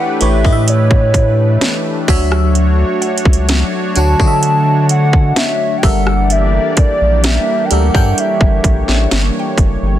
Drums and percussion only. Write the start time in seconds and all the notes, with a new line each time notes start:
0.21 closed hi-hat
0.45 kick
0.68 closed hi-hat
0.91 kick
1.14 kick, closed hi-hat
1.61 snare, closed hi-hat
2.08 kick, open hi-hat
2.32 cross-stick
2.55 closed hi-hat
3.02 closed hi-hat
3.18 closed hi-hat
3.25 kick
3.33 closed hi-hat
3.49 snare, closed hi-hat
3.96 closed hi-hat
4.20 kick
4.43 closed hi-hat
4.89 closed hi-hat
5.13 kick
5.36 snare, closed hi-hat
5.83 kick, open hi-hat
6.07 cross-stick
6.30 closed hi-hat
6.77 kick, closed hi-hat
7.24 snare, closed hi-hat
7.71 closed hi-hat
7.95 kick
8.18 closed hi-hat
8.41 kick
8.64 kick, closed hi-hat
8.88 snare
9.11 snare, closed hi-hat
9.58 kick, closed hi-hat